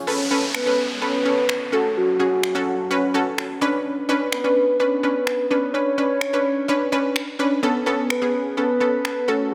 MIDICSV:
0, 0, Header, 1, 5, 480
1, 0, Start_track
1, 0, Tempo, 472441
1, 74, Time_signature, 4, 2, 24, 8
1, 9694, End_track
2, 0, Start_track
2, 0, Title_t, "Soft synth lead"
2, 0, Program_c, 0, 80
2, 559, Note_on_c, 0, 71, 108
2, 1003, Note_off_c, 0, 71, 0
2, 1038, Note_on_c, 0, 71, 108
2, 1759, Note_on_c, 0, 69, 90
2, 1774, Note_off_c, 0, 71, 0
2, 1997, Note_off_c, 0, 69, 0
2, 2005, Note_on_c, 0, 66, 95
2, 3639, Note_off_c, 0, 66, 0
2, 4394, Note_on_c, 0, 71, 97
2, 4840, Note_off_c, 0, 71, 0
2, 4871, Note_on_c, 0, 71, 96
2, 5552, Note_off_c, 0, 71, 0
2, 5588, Note_on_c, 0, 71, 87
2, 5823, Note_on_c, 0, 73, 108
2, 5838, Note_off_c, 0, 71, 0
2, 7509, Note_off_c, 0, 73, 0
2, 8234, Note_on_c, 0, 71, 115
2, 8680, Note_off_c, 0, 71, 0
2, 8716, Note_on_c, 0, 71, 110
2, 9435, Note_on_c, 0, 69, 93
2, 9450, Note_off_c, 0, 71, 0
2, 9686, Note_off_c, 0, 69, 0
2, 9694, End_track
3, 0, Start_track
3, 0, Title_t, "Synth pluck"
3, 0, Program_c, 1, 84
3, 72, Note_on_c, 1, 61, 84
3, 74, Note_on_c, 1, 69, 81
3, 78, Note_on_c, 1, 71, 95
3, 234, Note_off_c, 1, 61, 0
3, 234, Note_off_c, 1, 69, 0
3, 236, Note_off_c, 1, 71, 0
3, 312, Note_on_c, 1, 61, 84
3, 315, Note_on_c, 1, 69, 80
3, 316, Note_on_c, 1, 71, 96
3, 554, Note_off_c, 1, 61, 0
3, 555, Note_off_c, 1, 69, 0
3, 556, Note_off_c, 1, 71, 0
3, 672, Note_on_c, 1, 61, 77
3, 674, Note_on_c, 1, 69, 66
3, 678, Note_on_c, 1, 71, 80
3, 914, Note_off_c, 1, 61, 0
3, 915, Note_off_c, 1, 69, 0
3, 916, Note_off_c, 1, 71, 0
3, 1031, Note_on_c, 1, 61, 76
3, 1034, Note_on_c, 1, 69, 68
3, 1038, Note_on_c, 1, 71, 83
3, 1193, Note_off_c, 1, 61, 0
3, 1195, Note_off_c, 1, 69, 0
3, 1196, Note_off_c, 1, 71, 0
3, 1273, Note_on_c, 1, 61, 75
3, 1274, Note_on_c, 1, 69, 67
3, 1277, Note_on_c, 1, 73, 81
3, 1594, Note_off_c, 1, 61, 0
3, 1595, Note_off_c, 1, 69, 0
3, 1596, Note_off_c, 1, 73, 0
3, 1750, Note_on_c, 1, 61, 75
3, 1754, Note_on_c, 1, 66, 69
3, 1756, Note_on_c, 1, 69, 87
3, 2136, Note_off_c, 1, 61, 0
3, 2138, Note_off_c, 1, 66, 0
3, 2139, Note_off_c, 1, 69, 0
3, 2230, Note_on_c, 1, 61, 70
3, 2232, Note_on_c, 1, 66, 67
3, 2234, Note_on_c, 1, 68, 83
3, 2472, Note_off_c, 1, 61, 0
3, 2474, Note_off_c, 1, 66, 0
3, 2475, Note_off_c, 1, 68, 0
3, 2589, Note_on_c, 1, 61, 89
3, 2592, Note_on_c, 1, 66, 81
3, 2595, Note_on_c, 1, 69, 98
3, 2832, Note_off_c, 1, 61, 0
3, 2834, Note_off_c, 1, 66, 0
3, 2835, Note_off_c, 1, 69, 0
3, 2952, Note_on_c, 1, 61, 91
3, 2954, Note_on_c, 1, 66, 82
3, 2957, Note_on_c, 1, 71, 98
3, 3114, Note_off_c, 1, 61, 0
3, 3115, Note_off_c, 1, 66, 0
3, 3116, Note_off_c, 1, 71, 0
3, 3192, Note_on_c, 1, 61, 87
3, 3196, Note_on_c, 1, 66, 78
3, 3198, Note_on_c, 1, 69, 98
3, 3514, Note_off_c, 1, 61, 0
3, 3516, Note_off_c, 1, 66, 0
3, 3517, Note_off_c, 1, 69, 0
3, 3672, Note_on_c, 1, 61, 87
3, 3673, Note_on_c, 1, 62, 85
3, 3675, Note_on_c, 1, 71, 103
3, 4057, Note_off_c, 1, 61, 0
3, 4058, Note_off_c, 1, 62, 0
3, 4059, Note_off_c, 1, 71, 0
3, 4153, Note_on_c, 1, 61, 89
3, 4156, Note_on_c, 1, 62, 82
3, 4158, Note_on_c, 1, 71, 98
3, 4394, Note_off_c, 1, 61, 0
3, 4395, Note_off_c, 1, 62, 0
3, 4397, Note_off_c, 1, 71, 0
3, 4512, Note_on_c, 1, 61, 72
3, 4515, Note_on_c, 1, 62, 70
3, 4517, Note_on_c, 1, 71, 82
3, 4753, Note_off_c, 1, 61, 0
3, 4755, Note_off_c, 1, 62, 0
3, 4756, Note_off_c, 1, 71, 0
3, 4872, Note_on_c, 1, 61, 76
3, 4875, Note_on_c, 1, 62, 68
3, 4877, Note_on_c, 1, 71, 85
3, 5034, Note_off_c, 1, 61, 0
3, 5035, Note_off_c, 1, 62, 0
3, 5036, Note_off_c, 1, 71, 0
3, 5114, Note_on_c, 1, 61, 77
3, 5115, Note_on_c, 1, 62, 69
3, 5118, Note_on_c, 1, 71, 77
3, 5434, Note_off_c, 1, 61, 0
3, 5435, Note_off_c, 1, 62, 0
3, 5437, Note_off_c, 1, 71, 0
3, 5594, Note_on_c, 1, 61, 75
3, 5596, Note_on_c, 1, 62, 69
3, 5598, Note_on_c, 1, 71, 80
3, 5754, Note_off_c, 1, 61, 0
3, 5755, Note_off_c, 1, 62, 0
3, 5757, Note_off_c, 1, 71, 0
3, 5832, Note_on_c, 1, 61, 70
3, 5834, Note_on_c, 1, 62, 65
3, 5838, Note_on_c, 1, 71, 82
3, 5993, Note_off_c, 1, 61, 0
3, 5995, Note_off_c, 1, 62, 0
3, 5996, Note_off_c, 1, 71, 0
3, 6073, Note_on_c, 1, 61, 73
3, 6075, Note_on_c, 1, 62, 70
3, 6077, Note_on_c, 1, 71, 85
3, 6314, Note_off_c, 1, 61, 0
3, 6315, Note_off_c, 1, 62, 0
3, 6316, Note_off_c, 1, 71, 0
3, 6433, Note_on_c, 1, 61, 88
3, 6436, Note_on_c, 1, 62, 77
3, 6439, Note_on_c, 1, 71, 93
3, 6674, Note_off_c, 1, 61, 0
3, 6675, Note_off_c, 1, 62, 0
3, 6677, Note_off_c, 1, 71, 0
3, 6790, Note_on_c, 1, 61, 92
3, 6795, Note_on_c, 1, 62, 82
3, 6796, Note_on_c, 1, 71, 100
3, 6953, Note_off_c, 1, 61, 0
3, 6955, Note_off_c, 1, 62, 0
3, 6956, Note_off_c, 1, 71, 0
3, 7032, Note_on_c, 1, 61, 90
3, 7034, Note_on_c, 1, 62, 81
3, 7036, Note_on_c, 1, 71, 98
3, 7354, Note_off_c, 1, 61, 0
3, 7355, Note_off_c, 1, 62, 0
3, 7356, Note_off_c, 1, 71, 0
3, 7510, Note_on_c, 1, 61, 85
3, 7512, Note_on_c, 1, 62, 81
3, 7515, Note_on_c, 1, 71, 98
3, 7672, Note_off_c, 1, 61, 0
3, 7673, Note_off_c, 1, 62, 0
3, 7675, Note_off_c, 1, 71, 0
3, 7750, Note_on_c, 1, 59, 85
3, 7753, Note_on_c, 1, 61, 76
3, 7755, Note_on_c, 1, 69, 97
3, 7912, Note_off_c, 1, 59, 0
3, 7914, Note_off_c, 1, 61, 0
3, 7915, Note_off_c, 1, 69, 0
3, 7988, Note_on_c, 1, 59, 90
3, 7990, Note_on_c, 1, 61, 83
3, 7994, Note_on_c, 1, 69, 94
3, 8231, Note_off_c, 1, 59, 0
3, 8233, Note_off_c, 1, 61, 0
3, 8234, Note_off_c, 1, 69, 0
3, 8348, Note_on_c, 1, 59, 75
3, 8350, Note_on_c, 1, 61, 68
3, 8352, Note_on_c, 1, 68, 84
3, 8591, Note_off_c, 1, 59, 0
3, 8592, Note_off_c, 1, 61, 0
3, 8593, Note_off_c, 1, 68, 0
3, 8708, Note_on_c, 1, 59, 78
3, 8711, Note_on_c, 1, 61, 71
3, 8713, Note_on_c, 1, 69, 80
3, 8872, Note_off_c, 1, 59, 0
3, 8873, Note_off_c, 1, 61, 0
3, 8874, Note_off_c, 1, 69, 0
3, 8945, Note_on_c, 1, 59, 77
3, 8947, Note_on_c, 1, 61, 67
3, 8951, Note_on_c, 1, 69, 83
3, 9270, Note_off_c, 1, 59, 0
3, 9271, Note_off_c, 1, 61, 0
3, 9273, Note_off_c, 1, 69, 0
3, 9426, Note_on_c, 1, 61, 74
3, 9430, Note_on_c, 1, 66, 71
3, 9431, Note_on_c, 1, 69, 89
3, 9694, Note_off_c, 1, 61, 0
3, 9694, Note_off_c, 1, 66, 0
3, 9694, Note_off_c, 1, 69, 0
3, 9694, End_track
4, 0, Start_track
4, 0, Title_t, "Downlifter"
4, 0, Program_c, 2, 103
4, 73, Note_on_c, 2, 60, 81
4, 3914, Note_off_c, 2, 60, 0
4, 9694, End_track
5, 0, Start_track
5, 0, Title_t, "Drums"
5, 554, Note_on_c, 9, 26, 104
5, 656, Note_off_c, 9, 26, 0
5, 1514, Note_on_c, 9, 26, 107
5, 1616, Note_off_c, 9, 26, 0
5, 2473, Note_on_c, 9, 26, 108
5, 2575, Note_off_c, 9, 26, 0
5, 3437, Note_on_c, 9, 26, 106
5, 3539, Note_off_c, 9, 26, 0
5, 4394, Note_on_c, 9, 26, 107
5, 4495, Note_off_c, 9, 26, 0
5, 5354, Note_on_c, 9, 26, 105
5, 5456, Note_off_c, 9, 26, 0
5, 6313, Note_on_c, 9, 26, 108
5, 6414, Note_off_c, 9, 26, 0
5, 7273, Note_on_c, 9, 26, 102
5, 7375, Note_off_c, 9, 26, 0
5, 8233, Note_on_c, 9, 26, 109
5, 8334, Note_off_c, 9, 26, 0
5, 9194, Note_on_c, 9, 26, 105
5, 9296, Note_off_c, 9, 26, 0
5, 9694, End_track
0, 0, End_of_file